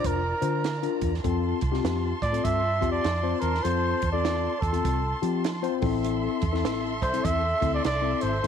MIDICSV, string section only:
0, 0, Header, 1, 2, 480
1, 0, Start_track
1, 0, Tempo, 600000
1, 998, Time_signature, 4, 2, 24, 8
1, 6777, End_track
2, 0, Start_track
2, 0, Title_t, "String section"
2, 0, Program_c, 0, 48
2, 0, Note_on_c, 0, 65, 74
2, 0, Note_on_c, 0, 74, 70
2, 0, Note_on_c, 0, 82, 78
2, 968, Note_off_c, 0, 82, 0
2, 970, Note_off_c, 0, 74, 0
2, 971, Note_off_c, 0, 65, 0
2, 997, Note_on_c, 0, 65, 66
2, 1000, Note_on_c, 0, 81, 66
2, 1003, Note_on_c, 0, 84, 73
2, 4630, Note_off_c, 0, 65, 0
2, 4631, Note_off_c, 0, 81, 0
2, 4633, Note_off_c, 0, 84, 0
2, 4663, Note_on_c, 0, 69, 81
2, 4665, Note_on_c, 0, 76, 82
2, 4666, Note_on_c, 0, 84, 83
2, 6777, Note_off_c, 0, 69, 0
2, 6777, Note_off_c, 0, 76, 0
2, 6777, Note_off_c, 0, 84, 0
2, 6777, End_track
0, 0, End_of_file